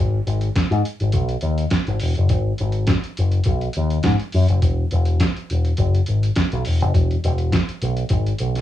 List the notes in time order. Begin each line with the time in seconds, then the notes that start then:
Already playing: G#1
0.27 G#1, closed hi-hat
0.41 closed hi-hat
0.56 muted picked electric bass stroke, kick, snare, closed hi-hat
0.71 G#2, closed hi-hat
0.85 closed hi-hat
1.00 G#1, closed hi-hat
1.12 B1, kick, closed hi-hat
1.29 closed hi-hat
1.41 D#2, closed hi-hat
1.58 closed hi-hat
1.71 kick, snare, closed hi-hat
1.87 G#1, closed hi-hat
2.00 E1, open hi-hat
2.15 F#1, closed hi-hat
2.29 G#1, kick, closed hi-hat
2.58 G#1, closed hi-hat
2.72 closed hi-hat
2.87 kick, snare, closed hi-hat
3.04 closed hi-hat
3.17 F#1, closed hi-hat
3.32 closed hi-hat
3.44 B1, kick, closed hi-hat
3.61 closed hi-hat
3.73 D#2, closed hi-hat
3.90 closed hi-hat
4.03 G#2, kick, snare, closed hi-hat
4.20 closed hi-hat
4.32 F#2, open hi-hat
4.48 F#1, closed hi-hat
4.62 E1, kick, closed hi-hat
4.91 E1, closed hi-hat
5.05 closed hi-hat
5.20 kick, snare, closed hi-hat
5.37 closed hi-hat
5.50 E1, closed hi-hat
5.65 closed hi-hat
5.77 F#1, kick, closed hi-hat
5.95 closed hi-hat
6.06 G#1, closed hi-hat
6.23 closed hi-hat
6.36 kick, snare, closed hi-hat
6.52 B1, closed hi-hat
6.65 E1, open hi-hat
6.81 F#1, closed hi-hat
6.94 E1, kick, closed hi-hat
7.11 closed hi-hat
7.24 E1, closed hi-hat
7.38 closed hi-hat
7.52 kick, snare, closed hi-hat
7.69 closed hi-hat
7.82 B1, closed hi-hat
7.97 closed hi-hat
8.09 G#1, kick, closed hi-hat
8.26 closed hi-hat
8.38 B1, closed hi-hat
8.55 snare, closed hi-hat